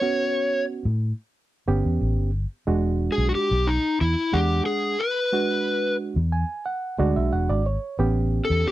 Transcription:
0.00 0.85 B3 medium
0.00 0.85 C#4 medium
0.00 0.85 F#4 medium
0.00 0.64 C#5 medium
0.85 1.11 A2 medium
1.67 1.81 G1 medium
1.67 2.30 B3 medium
1.67 2.30 C#4 medium
1.67 2.30 G4 medium
1.85 1.98 E2 medium
2.01 2.18 A1 medium
2.18 2.44 G1 medium
2.67 3.07 E1 medium
2.67 3.50 G#3 medium
2.67 3.50 D4 medium
2.67 3.51 F#4 medium
3.12 3.26 G#4 medium
3.18 3.30 B1 medium
3.29 3.35 F#4 medium
3.35 3.68 G4 medium
3.51 3.77 B1 medium
3.67 4.01 D#4 medium
4.01 4.14 E2 medium
4.01 4.35 E4 medium
4.33 4.60 E2 medium
4.33 4.95 G#3 medium
4.33 4.95 D4 medium
4.33 4.65 G4 medium
4.33 4.96 F#5 medium
4.66 5.00 G#4 medium
4.99 5.95 B4 medium
5.32 6.16 G#3 medium
5.32 6.16 D4 medium
5.32 6.16 F#4 medium
6.16 6.43 E2 medium
6.32 6.64 G#5 medium
6.66 6.97 F#5 medium
6.99 7.13 D2 medium
6.99 7.61 G#3 medium
6.99 7.62 D4 medium
6.99 7.62 F#4 medium
6.99 7.15 D5 medium
7.16 7.29 B1 medium
7.16 7.31 E5 medium
7.32 7.50 E1 medium
7.32 7.49 F#5 medium
7.49 7.76 G#1 medium
7.49 7.65 D5 medium
7.66 7.97 C#5 medium
7.99 8.39 A1 loud
7.99 8.71 B3 medium
7.99 8.71 C#4 medium
7.99 8.71 G4 medium
8.45 8.67 A4 medium
8.50 8.63 E2 medium
8.66 8.71 G4 medium
8.66 muted fingered electric bass stroke soft

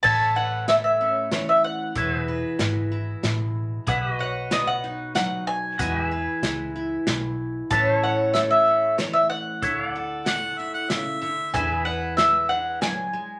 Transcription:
0.03 1.43 A1 medium
0.03 1.96 A2 medium
0.03 1.94 A4 medium
0.03 1.94 C#5 medium
0.03 1.95 E5 medium
0.03 0.36 A5 loud
0.03 kick loud
0.03 crash medium
0.36 1.98 B4 medium
0.36 0.68 F#5 medium
0.68 1.92 A3 medium
0.68 0.73 E5 medium
0.68 snare medium
0.68 closed hi-hat medium
0.84 1.32 E5 medium
1.01 1.92 C#4 medium
1.31 1.92 E3 medium
1.31 1.48 C#5 medium
1.31 snare medium
1.31 closed hi-hat medium
1.49 1.64 E5 medium
1.64 3.52 F#5 medium
1.95 2.42 E1 medium
1.95 3.83 E3 medium
1.95 2.58 G#3 medium
1.95 2.90 E4 medium
1.95 3.84 F#4 soft
1.95 2.16 A4 medium
1.95 2.28 B4 medium
1.95 2.23 C#5 medium
1.95 3.87 E5 medium
1.95 kick loud
1.95 closed hi-hat medium
2.16 3.86 G#4 medium
2.23 3.86 B4 medium
2.28 4.19 B4 medium
2.59 3.14 G#1 medium
2.59 3.83 G#3 medium
2.59 snare medium
2.59 closed hi-hat medium
2.92 3.84 E4 medium
3.23 3.77 A1 medium
3.23 3.83 B2 medium
3.23 snare medium
3.23 closed hi-hat medium
3.87 5.27 B1 medium
3.87 5.75 B2 medium
3.87 4.13 G#4 medium
3.87 5.78 B4 medium
3.87 4.11 E5 medium
3.87 4.19 F#5 medium
3.87 kick loud
3.87 closed hi-hat medium
4.11 5.78 F#4 medium
4.11 5.79 D#5 medium
4.19 5.75 C#5 medium
4.19 4.53 F#5 medium
4.51 5.75 B3 medium
4.51 4.68 D#5 medium
4.51 snare medium
4.51 closed hi-hat medium
4.67 5.12 F#5 medium
4.84 5.75 D#4 medium
5.15 5.75 F#3 medium
5.15 5.47 F#5 medium
5.15 snare medium
5.15 closed hi-hat medium
5.47 7.35 G#5 medium
5.79 6.26 E2 medium
5.79 8.97 E3 medium
5.79 6.42 G#3 medium
5.79 6.75 E4 medium
5.79 6.04 F#4 medium
5.79 7.68 G#4 medium
5.79 7.69 B4 medium
5.79 6.10 B4 medium
5.79 6.01 D#5 medium
5.79 kick loud
5.79 closed hi-hat medium
6.01 7.69 G#4 medium
6.01 7.70 E5 medium
6.11 7.67 B4 medium
6.42 6.97 C#2 medium
6.42 7.67 G#3 medium
6.42 snare medium
6.42 closed hi-hat medium
6.76 7.72 E4 medium
7.07 7.62 B1 medium
7.07 7.67 B2 medium
7.07 snare medium
7.07 closed hi-hat medium
7.70 9.10 A1 medium
7.70 9.62 A2 medium
7.70 8.35 A3 medium
7.70 8.66 C#4 medium
7.70 10.60 E4 medium
7.70 9.61 A4 medium
7.70 7.98 B4 medium
7.70 8.03 C#5 medium
7.70 9.62 E5 medium
7.70 8.03 A5 medium
7.70 kick loud
7.70 closed hi-hat medium
7.98 9.61 C#5 medium
8.03 9.59 C#5 medium
8.03 8.33 F#5 medium
8.34 9.59 A3 medium
8.34 8.39 E5 medium
8.34 snare medium
8.34 closed hi-hat medium
8.50 8.95 E5 medium
8.68 9.59 C#4 medium
8.98 9.62 E3 medium
8.98 9.15 C#5 medium
8.98 snare medium
8.98 closed hi-hat medium
9.13 9.29 E5 medium
9.30 11.17 F#5 medium
9.62 11.02 D2 medium
9.62 11.20 D3 medium
9.62 11.52 A4 medium
9.62 9.83 C#5 medium
9.62 9.89 E5 medium
9.62 kick medium
9.62 closed hi-hat medium
9.83 11.52 D5 medium
9.89 11.53 F#5 medium
9.96 11.54 A4 medium
10.26 11.50 A3 medium
10.26 10.60 F#5 medium
10.26 snare medium
10.26 closed hi-hat medium
10.58 11.55 E4 medium
10.58 10.73 E5 medium
10.74 10.91 F#5 medium
10.90 11.22 C#3 medium
10.90 11.21 E5 medium
10.90 snare medium
10.90 closed hi-hat medium
11.22 11.54 D3 medium
11.22 11.53 E5 medium
11.54 12.93 E2 medium
11.54 12.81 E3 medium
11.54 12.17 G#3 medium
11.54 12.49 D4 medium
11.54 13.40 G#4 medium
11.54 11.75 A4 medium
11.54 13.40 B4 medium
11.54 11.85 B4 medium
11.54 13.40 E5 medium
11.54 11.85 G#5 medium
11.54 kick medium
11.54 closed hi-hat medium
11.75 13.40 G#4 medium
11.85 13.40 B4 medium
11.85 12.17 F#5 medium
12.17 13.12 G#3 medium
12.17 12.49 E5 medium
12.17 snare medium
12.17 closed hi-hat medium
12.49 13.40 D4 medium
12.49 12.81 F#5 medium
12.81 13.13 F#3 medium
12.81 13.40 G#5 medium
12.81 snare medium
12.81 closed hi-hat medium
13.13 13.40 G#3 medium

